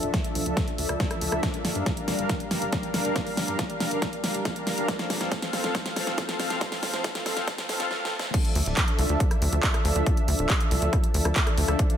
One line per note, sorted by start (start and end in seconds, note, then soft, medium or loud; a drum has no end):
0.03 0.10 D1 medium
0.03 0.18 F3 medium
0.03 0.18 D4 medium
0.03 0.18 A4 medium
0.03 0.18 E5 medium
0.03 closed hi-hat soft
0.14 kick loud
0.14 snare medium
0.14 closed hi-hat medium
0.24 0.40 F3 medium
0.24 0.40 D4 medium
0.24 0.40 A4 medium
0.24 0.40 E5 medium
0.24 closed hi-hat soft
0.35 0.42 C2 medium
0.35 open hi-hat loud
0.46 0.53 D2 medium
0.46 0.61 F3 medium
0.46 0.61 D4 medium
0.46 0.61 A4 medium
0.46 0.61 E5 medium
0.46 closed hi-hat medium
0.57 kick loud
0.57 snare medium
0.57 closed hi-hat medium
0.68 closed hi-hat soft
0.78 0.85 D2 medium
0.78 0.94 F3 medium
0.78 0.94 D4 medium
0.78 0.94 A4 medium
0.78 0.94 E5 medium
0.78 open hi-hat loud
0.89 0.96 D2 medium
0.89 cross-stick medium
0.89 closed hi-hat soft
1.00 1.15 F3 medium
1.00 1.15 D4 medium
1.00 1.15 A4 medium
1.00 1.15 E5 medium
1.00 kick loud
1.00 snare medium
1.00 closed hi-hat medium
1.11 cross-stick medium
1.11 closed hi-hat soft
1.21 1.29 D2 medium
1.21 1.37 F3 medium
1.21 1.37 D4 medium
1.21 1.37 A4 medium
1.21 1.37 E5 medium
1.21 open hi-hat loud
1.32 1.39 D2 medium
1.32 cross-stick medium
1.32 closed hi-hat soft
1.43 1.58 G3 medium
1.43 1.58 D4 medium
1.43 1.58 A#4 medium
1.43 1.58 F5 medium
1.43 kick loud
1.43 snare medium
1.43 closed hi-hat medium
1.54 closed hi-hat medium
1.65 1.72 G1 medium
1.65 snare medium
1.65 open hi-hat loud
1.75 1.83 G2 medium
1.75 1.90 G3 medium
1.75 1.91 D4 medium
1.75 1.90 A#4 medium
1.75 1.91 F5 medium
1.75 closed hi-hat soft
1.86 kick loud
1.86 snare medium
1.86 closed hi-hat medium
1.97 2.12 G3 medium
1.97 2.12 D4 medium
1.97 2.12 A#4 medium
1.97 2.12 F5 medium
1.97 closed hi-hat medium
2.08 2.15 F1 medium
2.08 snare medium
2.08 open hi-hat loud
2.18 2.26 G1 medium
2.18 2.34 G3 medium
2.18 2.34 D4 medium
2.18 2.34 A#4 medium
2.18 2.34 F5 medium
2.18 closed hi-hat soft
2.29 kick loud
2.29 snare medium
2.29 closed hi-hat medium
2.40 closed hi-hat medium
2.51 2.58 G1 medium
2.51 2.66 G3 medium
2.51 2.66 D4 medium
2.51 2.66 A#4 medium
2.51 2.66 F5 medium
2.51 snare medium
2.51 open hi-hat loud
2.62 2.69 G1 medium
2.62 closed hi-hat soft
2.72 2.88 G3 medium
2.72 2.88 D4 medium
2.72 2.88 A#4 medium
2.72 2.88 F5 medium
2.72 kick loud
2.72 snare medium
2.72 closed hi-hat medium
2.83 closed hi-hat soft
2.94 3.01 G1 medium
2.94 3.09 G3 medium
2.94 3.09 D4 medium
2.94 3.09 A#4 medium
2.94 3.09 F5 medium
2.94 snare medium
2.94 open hi-hat loud
3.05 3.12 G1 medium
3.05 closed hi-hat soft
3.16 3.31 G3 medium
3.16 3.31 D4 medium
3.16 3.31 A#4 medium
3.16 3.31 F5 medium
3.16 kick loud
3.16 snare medium
3.16 closed hi-hat medium
3.27 open hi-hat medium
3.37 3.45 G1 medium
3.37 snare medium
3.37 open hi-hat loud
3.48 3.55 G2 medium
3.48 3.63 G3 medium
3.48 3.63 D4 medium
3.48 3.63 A#4 medium
3.48 3.63 F5 medium
3.48 closed hi-hat medium
3.59 kick loud
3.59 snare medium
3.59 closed hi-hat medium
3.70 3.85 G3 medium
3.70 3.85 D4 medium
3.70 3.85 A#4 medium
3.70 3.85 F5 medium
3.70 closed hi-hat medium
3.80 3.88 F1 loud
3.80 snare medium
3.80 open hi-hat loud
3.91 3.98 G1 medium
3.91 4.06 G3 medium
3.91 4.06 D4 medium
3.91 4.06 A#4 medium
3.91 4.06 F5 medium
3.91 closed hi-hat medium
4.02 kick loud
4.02 snare medium
4.02 closed hi-hat medium
4.13 closed hi-hat medium
4.24 4.31 G1 loud
4.24 4.39 G3 medium
4.24 4.39 D4 medium
4.24 4.39 A#4 medium
4.24 4.39 F5 medium
4.24 snare medium
4.24 open hi-hat loud
4.34 4.42 G1 medium
4.34 closed hi-hat medium
4.45 4.60 G3 medium
4.45 4.60 D4 medium
4.45 4.60 A#4 medium
4.45 4.60 F5 medium
4.45 kick loud
4.45 snare medium
4.45 closed hi-hat medium
4.56 closed hi-hat medium
4.67 4.74 G1 medium
4.67 4.82 G3 loud
4.67 4.82 D4 medium
4.67 4.82 A#4 medium
4.67 4.82 F5 medium
4.67 snare medium
4.67 open hi-hat loud
4.78 4.85 G1 medium
4.78 closed hi-hat medium
4.88 5.04 F3 loud
4.88 5.04 C4 loud
4.88 5.04 A4 loud
4.88 5.04 F5 medium
4.88 kick loud
4.88 snare medium
4.88 closed hi-hat medium
4.99 snare medium
4.99 closed hi-hat medium
5.10 5.17 F1 medium
5.10 snare loud
5.10 open hi-hat loud
5.21 5.28 F2 medium
5.21 5.36 F3 medium
5.21 5.36 C4 medium
5.21 5.36 A4 medium
5.21 5.36 F5 medium
5.21 snare medium
5.21 closed hi-hat medium
5.32 kick loud
5.32 snare medium
5.32 closed hi-hat medium
5.42 5.57 F3 medium
5.42 5.57 C4 medium
5.42 5.57 A4 medium
5.42 5.57 F5 medium
5.42 snare medium
5.42 closed hi-hat medium
5.53 5.60 C2 loud
5.53 snare medium
5.53 open hi-hat loud
5.64 5.71 F1 medium
5.64 5.79 F3 medium
5.64 5.79 C4 medium
5.64 5.79 A4 medium
5.64 5.79 F5 medium
5.64 snare medium
5.64 closed hi-hat medium
5.75 kick loud
5.75 snare loud
5.75 closed hi-hat medium
5.86 snare medium
5.86 closed hi-hat medium
5.96 6.03 F1 medium
5.96 6.12 F3 medium
5.96 6.12 C4 medium
5.96 6.11 A4 medium
5.96 6.12 F5 medium
5.96 snare loud
5.96 open hi-hat loud
6.07 6.14 F1 medium
6.07 snare medium
6.07 closed hi-hat medium
6.18 6.33 F3 medium
6.18 6.33 C4 medium
6.18 6.33 A4 medium
6.18 6.33 F5 medium
6.18 kick loud
6.18 snare loud
6.18 closed hi-hat medium
6.29 snare medium
6.29 closed hi-hat medium
6.40 6.47 F1 medium
6.40 6.55 F3 medium
6.40 6.55 C4 medium
6.40 6.55 A4 loud
6.40 6.55 F5 medium
6.40 snare loud
6.40 open hi-hat loud
6.50 6.57 F1 medium
6.50 snare medium
6.50 closed hi-hat medium
6.61 6.76 F3 medium
6.61 6.76 C4 medium
6.61 6.76 A4 medium
6.61 6.76 F5 loud
6.61 kick loud
6.61 snare loud
6.61 closed hi-hat medium
6.72 snare medium
6.72 open hi-hat medium
6.83 6.90 F1 medium
6.83 snare loud
6.83 open hi-hat loud
6.93 7.01 F2 medium
6.93 7.09 F3 medium
6.93 7.09 C4 medium
6.93 7.09 A4 medium
6.93 7.09 F5 medium
6.93 snare medium
6.93 closed hi-hat medium
7.04 kick loud
7.04 snare loud
7.04 closed hi-hat medium
7.15 7.30 F3 medium
7.15 7.30 C4 medium
7.15 7.30 A4 medium
7.15 7.30 F5 medium
7.15 snare loud
7.15 closed hi-hat medium
7.26 7.33 C2 medium
7.26 snare loud
7.26 open hi-hat loud
7.37 7.44 F1 medium
7.37 7.52 F3 medium
7.37 7.52 C4 medium
7.37 7.52 A4 medium
7.37 7.52 F5 medium
7.37 snare medium
7.37 closed hi-hat medium
7.48 kick loud
7.48 snare loud
7.48 closed hi-hat medium
7.58 snare loud
7.58 closed hi-hat medium
7.69 7.76 F1 medium
7.69 7.84 F3 medium
7.69 7.84 C4 medium
7.69 7.84 A4 medium
7.69 7.84 F5 medium
7.69 snare loud
7.69 open hi-hat loud
7.80 7.87 F1 medium
7.80 snare medium
7.80 closed hi-hat medium
7.91 snare medium
8.05 snare medium
8.19 snare loud
8.34 8.49 F3 medium
8.34 8.49 D4 medium
8.34 8.49 A4 medium
8.34 8.49 E5 medium
8.34 kick loud
8.34 closed hi-hat loud
8.34 crash loud
8.45 closed hi-hat medium
8.55 8.63 D2 medium
8.55 open hi-hat loud
8.66 8.73 D1 medium
8.66 8.81 F3 medium
8.66 8.81 D4 medium
8.66 8.81 A4 medium
8.66 8.81 E5 medium
8.66 closed hi-hat medium
8.77 kick loud
8.77 clap loud
8.77 closed hi-hat medium
8.88 9.03 F3 medium
8.88 9.03 D4 medium
8.88 9.03 A4 medium
8.88 9.03 E5 medium
8.88 closed hi-hat medium
8.99 9.06 C2 loud
8.99 open hi-hat loud
9.09 9.16 D2 medium
9.09 9.25 F3 medium
9.09 9.25 D4 medium
9.09 9.25 A4 medium
9.09 9.25 E5 medium
9.09 closed hi-hat medium
9.20 kick loud
9.20 closed hi-hat medium
9.31 cross-stick medium
9.31 closed hi-hat medium
9.42 9.49 D2 medium
9.42 9.57 F3 medium
9.42 9.57 D4 medium
9.42 9.57 A4 medium
9.42 9.57 E5 medium
9.42 open hi-hat loud
9.52 9.60 D2 medium
9.52 closed hi-hat medium
9.63 9.79 F3 medium
9.63 9.79 D4 medium
9.63 9.79 A4 medium
9.63 9.79 E5 medium
9.63 kick loud
9.63 clap loud
9.63 closed hi-hat loud
9.74 cross-stick medium
9.74 closed hi-hat medium
9.85 9.92 D2 loud
9.85 10.00 F3 loud
9.85 10.00 D4 loud
9.85 10.00 A4 loud
9.85 10.00 E5 loud
9.85 open hi-hat loud
9.96 10.03 D2 medium
9.96 closed hi-hat medium
10.06 10.22 F3 medium
10.06 10.22 D4 medium
10.06 10.21 A4 loud
10.06 10.22 E5 medium
10.06 kick loud
10.06 closed hi-hat medium
10.17 closed hi-hat medium
10.28 10.35 D2 medium
10.28 open hi-hat loud
10.39 10.46 D1 medium
10.39 10.54 F3 medium
10.39 10.54 D4 medium
10.39 10.54 A4 medium
10.39 10.54 E5 medium
10.39 closed hi-hat medium
10.50 kick loud
10.50 clap loud
10.50 closed hi-hat medium
10.60 10.76 F3 medium
10.60 10.76 D4 medium
10.60 10.76 A4 medium
10.60 10.76 E5 medium
10.60 closed hi-hat medium
10.71 10.78 C2 loud
10.71 open hi-hat loud
10.82 10.89 D2 medium
10.82 10.97 F3 medium
10.82 10.97 D4 medium
10.82 10.97 A4 medium
10.82 10.97 E5 medium
10.82 closed hi-hat medium
10.93 kick loud
10.93 cross-stick medium
10.93 closed hi-hat medium
11.04 closed hi-hat medium
11.14 11.21 D2 medium
11.14 11.30 F3 medium
11.14 11.29 D4 medium
11.14 11.30 A4 medium
11.14 11.30 E5 medium
11.14 open hi-hat loud
11.25 11.32 D2 medium
11.25 cross-stick medium
11.25 closed hi-hat medium
11.36 11.51 F3 medium
11.36 11.51 D4 medium
11.36 11.51 A4 medium
11.36 11.51 E5 medium
11.36 kick loud
11.36 clap loud
11.36 closed hi-hat medium
11.47 cross-stick medium
11.47 closed hi-hat medium
11.58 11.65 D2 loud
11.58 11.73 F3 loud
11.58 11.73 D4 medium
11.58 11.73 A4 loud
11.58 11.73 E5 loud
11.58 open hi-hat loud
11.68 11.75 D2 medium
11.68 cross-stick medium
11.68 closed hi-hat medium
11.79 11.94 F3 medium
11.79 11.94 D4 medium
11.79 11.94 A4 loud
11.79 11.94 F5 medium
11.79 kick loud
11.79 closed hi-hat medium
11.90 closed hi-hat medium